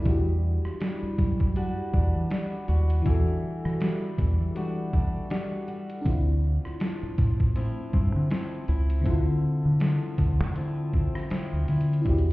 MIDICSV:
0, 0, Header, 1, 6, 480
1, 0, Start_track
1, 0, Tempo, 750000
1, 36, Time_signature, 4, 2, 24, 8
1, 7891, End_track
2, 0, Start_track
2, 0, Title_t, "FM electric piano"
2, 0, Program_c, 0, 5
2, 0, Control_c, 0, 64, 127
2, 13, Note_on_c, 0, 64, 78
2, 30, Note_on_c, 0, 62, 67
2, 43, Control_c, 0, 64, 0
2, 48, Note_on_c, 0, 66, 73
2, 66, Note_on_c, 0, 67, 87
2, 149, Control_c, 0, 64, 127
2, 1919, Note_off_c, 0, 64, 0
2, 1927, Note_off_c, 0, 62, 0
2, 1932, Note_on_c, 0, 52, 83
2, 1937, Note_off_c, 0, 66, 0
2, 1946, Note_off_c, 0, 67, 0
2, 1949, Note_on_c, 0, 62, 74
2, 1967, Note_on_c, 0, 66, 69
2, 1985, Note_on_c, 0, 69, 88
2, 3838, Note_off_c, 0, 52, 0
2, 3842, Note_off_c, 0, 62, 0
2, 3849, Note_on_c, 0, 62, 79
2, 3856, Note_off_c, 0, 66, 0
2, 3865, Note_off_c, 0, 69, 0
2, 3868, Note_on_c, 0, 60, 70
2, 3886, Control_c, 0, 64, 0
2, 3886, Note_on_c, 0, 64, 77
2, 3904, Note_on_c, 0, 65, 87
2, 3989, Control_c, 0, 64, 127
2, 5757, Note_off_c, 0, 62, 0
2, 5767, Note_off_c, 0, 60, 0
2, 5768, Note_on_c, 0, 50, 76
2, 5776, Note_off_c, 0, 64, 0
2, 5784, Note_off_c, 0, 65, 0
2, 5785, Note_on_c, 0, 60, 74
2, 5805, Note_on_c, 0, 64, 72
2, 5822, Note_on_c, 0, 65, 87
2, 7677, Note_off_c, 0, 50, 0
2, 7683, Note_off_c, 0, 64, 0
2, 7685, Note_off_c, 0, 60, 0
2, 7691, Note_on_c, 0, 64, 83
2, 7703, Note_off_c, 0, 65, 0
2, 7708, Note_on_c, 0, 62, 72
2, 7725, Control_c, 0, 64, 0
2, 7727, Note_on_c, 0, 66, 71
2, 7744, Note_on_c, 0, 67, 87
2, 7828, Control_c, 0, 64, 127
2, 7891, Note_off_c, 0, 62, 0
2, 7891, Note_off_c, 0, 64, 0
2, 7891, Note_off_c, 0, 66, 0
2, 7891, Note_off_c, 0, 67, 0
2, 7891, End_track
3, 0, Start_track
3, 0, Title_t, "Nylon-string guitar"
3, 0, Program_c, 1, 24
3, 0, Note_on_c, 1, 47, 83
3, 0, Note_on_c, 1, 55, 65
3, 0, Note_on_c, 1, 57, 67
3, 0, Note_on_c, 1, 63, 70
3, 91, Note_off_c, 1, 47, 0
3, 92, Note_off_c, 1, 63, 0
3, 93, Note_off_c, 1, 57, 0
3, 413, Note_off_c, 1, 55, 0
3, 516, Note_on_c, 1, 55, 66
3, 989, Note_off_c, 1, 55, 0
3, 997, Note_on_c, 1, 55, 65
3, 1001, Note_on_c, 1, 62, 65
3, 1005, Note_on_c, 1, 66, 73
3, 1234, Note_off_c, 1, 62, 0
3, 1236, Note_on_c, 1, 62, 66
3, 1469, Note_off_c, 1, 55, 0
3, 1477, Note_off_c, 1, 66, 0
3, 1477, Note_on_c, 1, 55, 69
3, 1479, Note_off_c, 1, 62, 0
3, 1481, Note_on_c, 1, 62, 61
3, 1485, Note_on_c, 1, 66, 73
3, 1708, Note_off_c, 1, 66, 0
3, 1716, Note_on_c, 1, 66, 70
3, 1957, Note_on_c, 1, 52, 77
3, 2428, Note_off_c, 1, 55, 0
3, 2436, Note_on_c, 1, 55, 66
3, 2907, Note_off_c, 1, 55, 0
3, 2914, Note_on_c, 1, 55, 65
3, 2916, Note_off_c, 1, 66, 0
3, 2917, Note_off_c, 1, 62, 0
3, 2919, Note_on_c, 1, 62, 64
3, 2923, Note_on_c, 1, 66, 73
3, 3152, Note_off_c, 1, 62, 0
3, 3154, Note_on_c, 1, 62, 64
3, 3386, Note_off_c, 1, 55, 0
3, 3393, Note_off_c, 1, 66, 0
3, 3393, Note_on_c, 1, 55, 66
3, 3395, Note_off_c, 1, 62, 0
3, 3398, Note_on_c, 1, 62, 65
3, 3401, Note_on_c, 1, 66, 69
3, 3627, Note_off_c, 1, 66, 0
3, 3634, Note_on_c, 1, 66, 68
3, 3931, Note_off_c, 1, 55, 0
3, 3931, Note_off_c, 1, 66, 0
3, 4197, Note_off_c, 1, 52, 0
3, 4253, Note_off_c, 1, 62, 0
3, 4354, Note_on_c, 1, 53, 64
3, 4827, Note_off_c, 1, 53, 0
3, 4834, Note_on_c, 1, 53, 68
3, 4839, Note_on_c, 1, 60, 64
3, 4842, Note_on_c, 1, 64, 71
3, 5067, Note_off_c, 1, 60, 0
3, 5075, Note_on_c, 1, 60, 66
3, 5308, Note_off_c, 1, 53, 0
3, 5313, Note_off_c, 1, 60, 0
3, 5316, Note_on_c, 1, 53, 63
3, 5320, Note_on_c, 1, 60, 66
3, 5321, Note_off_c, 1, 64, 0
3, 5323, Note_on_c, 1, 64, 72
3, 5553, Note_off_c, 1, 64, 0
3, 5556, Note_on_c, 1, 64, 71
3, 5797, Note_on_c, 1, 50, 80
3, 6269, Note_off_c, 1, 53, 0
3, 6276, Note_on_c, 1, 53, 65
3, 6750, Note_off_c, 1, 53, 0
3, 6754, Note_off_c, 1, 60, 0
3, 6758, Note_on_c, 1, 53, 64
3, 6762, Note_on_c, 1, 60, 64
3, 6764, Note_off_c, 1, 64, 0
3, 6766, Note_on_c, 1, 64, 67
3, 6990, Note_off_c, 1, 60, 0
3, 6997, Note_on_c, 1, 60, 66
3, 7229, Note_off_c, 1, 53, 0
3, 7233, Note_off_c, 1, 60, 0
3, 7237, Note_on_c, 1, 53, 67
3, 7241, Note_on_c, 1, 60, 66
3, 7242, Note_off_c, 1, 64, 0
3, 7244, Note_on_c, 1, 64, 74
3, 7474, Note_off_c, 1, 64, 0
3, 7477, Note_on_c, 1, 64, 69
3, 7772, Note_off_c, 1, 53, 0
3, 7774, Note_off_c, 1, 60, 0
3, 7891, Note_off_c, 1, 50, 0
3, 7891, Note_off_c, 1, 64, 0
3, 7891, End_track
4, 0, Start_track
4, 0, Title_t, "Fingered electric bass"
4, 0, Program_c, 2, 33
4, 37, Note_on_c, 2, 40, 112
4, 362, Note_off_c, 2, 40, 0
4, 759, Note_on_c, 2, 42, 101
4, 1083, Note_off_c, 2, 42, 0
4, 1240, Note_on_c, 2, 40, 97
4, 1358, Note_off_c, 2, 40, 0
4, 1378, Note_on_c, 2, 52, 100
4, 1463, Note_off_c, 2, 52, 0
4, 1720, Note_on_c, 2, 39, 94
4, 1924, Note_off_c, 2, 39, 0
4, 1959, Note_on_c, 2, 40, 99
4, 2077, Note_off_c, 2, 40, 0
4, 2338, Note_on_c, 2, 52, 94
4, 2543, Note_off_c, 2, 52, 0
4, 2679, Note_on_c, 2, 40, 96
4, 2797, Note_off_c, 2, 40, 0
4, 2819, Note_on_c, 2, 52, 97
4, 3229, Note_off_c, 2, 52, 0
4, 3877, Note_on_c, 2, 38, 114
4, 4201, Note_off_c, 2, 38, 0
4, 4598, Note_on_c, 2, 45, 97
4, 4922, Note_off_c, 2, 45, 0
4, 5079, Note_on_c, 2, 43, 96
4, 5197, Note_off_c, 2, 43, 0
4, 5220, Note_on_c, 2, 50, 97
4, 5304, Note_off_c, 2, 50, 0
4, 5560, Note_on_c, 2, 37, 99
4, 5764, Note_off_c, 2, 37, 0
4, 5798, Note_on_c, 2, 38, 116
4, 5916, Note_off_c, 2, 38, 0
4, 6179, Note_on_c, 2, 50, 99
4, 6383, Note_off_c, 2, 50, 0
4, 6519, Note_on_c, 2, 38, 104
4, 6660, Note_off_c, 2, 38, 0
4, 6660, Note_on_c, 2, 50, 99
4, 7069, Note_off_c, 2, 50, 0
4, 7380, Note_on_c, 2, 38, 88
4, 7464, Note_off_c, 2, 38, 0
4, 7481, Note_on_c, 2, 50, 99
4, 7684, Note_off_c, 2, 50, 0
4, 7719, Note_on_c, 2, 40, 107
4, 7891, Note_off_c, 2, 40, 0
4, 7891, End_track
5, 0, Start_track
5, 0, Title_t, "Muted fingered electric bass strokes"
5, 419, Note_on_c, 9, 29, 44
5, 483, Note_off_c, 9, 29, 0
5, 659, Note_on_c, 9, 29, 48
5, 723, Note_off_c, 9, 29, 0
5, 2200, Note_on_c, 9, 29, 52
5, 2264, Note_off_c, 9, 29, 0
5, 4259, Note_on_c, 9, 29, 48
5, 4323, Note_off_c, 9, 29, 0
5, 4499, Note_on_c, 9, 29, 49
5, 4563, Note_off_c, 9, 29, 0
5, 6039, Note_on_c, 9, 29, 48
5, 6103, Note_off_c, 9, 29, 0
5, 7240, Note_on_c, 9, 29, 51
5, 7304, Note_off_c, 9, 29, 0
5, 7891, End_track
6, 0, Start_track
6, 0, Title_t, "Drums"
6, 35, Note_on_c, 9, 42, 82
6, 36, Note_on_c, 9, 36, 125
6, 99, Note_off_c, 9, 42, 0
6, 100, Note_off_c, 9, 36, 0
6, 416, Note_on_c, 9, 37, 63
6, 480, Note_off_c, 9, 37, 0
6, 515, Note_on_c, 9, 42, 77
6, 522, Note_on_c, 9, 38, 123
6, 579, Note_off_c, 9, 42, 0
6, 586, Note_off_c, 9, 38, 0
6, 758, Note_on_c, 9, 36, 94
6, 759, Note_on_c, 9, 42, 68
6, 822, Note_off_c, 9, 36, 0
6, 823, Note_off_c, 9, 42, 0
6, 897, Note_on_c, 9, 36, 94
6, 961, Note_off_c, 9, 36, 0
6, 998, Note_on_c, 9, 42, 68
6, 1062, Note_off_c, 9, 42, 0
6, 1239, Note_on_c, 9, 36, 94
6, 1303, Note_off_c, 9, 36, 0
6, 1475, Note_on_c, 9, 42, 65
6, 1481, Note_on_c, 9, 38, 122
6, 1539, Note_off_c, 9, 42, 0
6, 1545, Note_off_c, 9, 38, 0
6, 1716, Note_on_c, 9, 42, 49
6, 1780, Note_off_c, 9, 42, 0
6, 1855, Note_on_c, 9, 42, 76
6, 1919, Note_off_c, 9, 42, 0
6, 1956, Note_on_c, 9, 42, 83
6, 1957, Note_on_c, 9, 36, 127
6, 2020, Note_off_c, 9, 42, 0
6, 2021, Note_off_c, 9, 36, 0
6, 2338, Note_on_c, 9, 37, 66
6, 2402, Note_off_c, 9, 37, 0
6, 2435, Note_on_c, 9, 42, 82
6, 2443, Note_on_c, 9, 38, 121
6, 2499, Note_off_c, 9, 42, 0
6, 2507, Note_off_c, 9, 38, 0
6, 2677, Note_on_c, 9, 36, 104
6, 2678, Note_on_c, 9, 42, 73
6, 2741, Note_off_c, 9, 36, 0
6, 2742, Note_off_c, 9, 42, 0
6, 2917, Note_on_c, 9, 42, 72
6, 2981, Note_off_c, 9, 42, 0
6, 3158, Note_on_c, 9, 36, 98
6, 3222, Note_off_c, 9, 36, 0
6, 3394, Note_on_c, 9, 42, 68
6, 3400, Note_on_c, 9, 38, 121
6, 3458, Note_off_c, 9, 42, 0
6, 3464, Note_off_c, 9, 38, 0
6, 3635, Note_on_c, 9, 42, 49
6, 3699, Note_off_c, 9, 42, 0
6, 3774, Note_on_c, 9, 42, 74
6, 3838, Note_off_c, 9, 42, 0
6, 3876, Note_on_c, 9, 36, 122
6, 3877, Note_on_c, 9, 42, 84
6, 3940, Note_off_c, 9, 36, 0
6, 3941, Note_off_c, 9, 42, 0
6, 4257, Note_on_c, 9, 37, 65
6, 4321, Note_off_c, 9, 37, 0
6, 4353, Note_on_c, 9, 42, 80
6, 4360, Note_on_c, 9, 38, 116
6, 4417, Note_off_c, 9, 42, 0
6, 4424, Note_off_c, 9, 38, 0
6, 4596, Note_on_c, 9, 36, 96
6, 4596, Note_on_c, 9, 42, 66
6, 4660, Note_off_c, 9, 36, 0
6, 4660, Note_off_c, 9, 42, 0
6, 4736, Note_on_c, 9, 36, 92
6, 4800, Note_off_c, 9, 36, 0
6, 4837, Note_on_c, 9, 42, 70
6, 4901, Note_off_c, 9, 42, 0
6, 5078, Note_on_c, 9, 36, 98
6, 5142, Note_off_c, 9, 36, 0
6, 5315, Note_on_c, 9, 42, 67
6, 5321, Note_on_c, 9, 38, 123
6, 5379, Note_off_c, 9, 42, 0
6, 5385, Note_off_c, 9, 38, 0
6, 5556, Note_on_c, 9, 42, 46
6, 5620, Note_off_c, 9, 42, 0
6, 5695, Note_on_c, 9, 42, 75
6, 5759, Note_off_c, 9, 42, 0
6, 5795, Note_on_c, 9, 42, 81
6, 5796, Note_on_c, 9, 36, 126
6, 5859, Note_off_c, 9, 42, 0
6, 5860, Note_off_c, 9, 36, 0
6, 6273, Note_on_c, 9, 42, 81
6, 6281, Note_on_c, 9, 38, 115
6, 6337, Note_off_c, 9, 42, 0
6, 6345, Note_off_c, 9, 38, 0
6, 6516, Note_on_c, 9, 42, 69
6, 6517, Note_on_c, 9, 36, 104
6, 6580, Note_off_c, 9, 42, 0
6, 6581, Note_off_c, 9, 36, 0
6, 6756, Note_on_c, 9, 42, 73
6, 6820, Note_off_c, 9, 42, 0
6, 6998, Note_on_c, 9, 36, 96
6, 7062, Note_off_c, 9, 36, 0
6, 7138, Note_on_c, 9, 37, 105
6, 7202, Note_off_c, 9, 37, 0
6, 7235, Note_on_c, 9, 42, 66
6, 7241, Note_on_c, 9, 38, 123
6, 7299, Note_off_c, 9, 42, 0
6, 7305, Note_off_c, 9, 38, 0
6, 7476, Note_on_c, 9, 42, 65
6, 7540, Note_off_c, 9, 42, 0
6, 7556, Note_on_c, 9, 42, 65
6, 7620, Note_off_c, 9, 42, 0
6, 7636, Note_on_c, 9, 42, 62
6, 7700, Note_off_c, 9, 42, 0
6, 7716, Note_on_c, 9, 36, 123
6, 7717, Note_on_c, 9, 42, 67
6, 7780, Note_off_c, 9, 36, 0
6, 7781, Note_off_c, 9, 42, 0
6, 7796, Note_on_c, 9, 42, 65
6, 7860, Note_off_c, 9, 42, 0
6, 7891, End_track
0, 0, End_of_file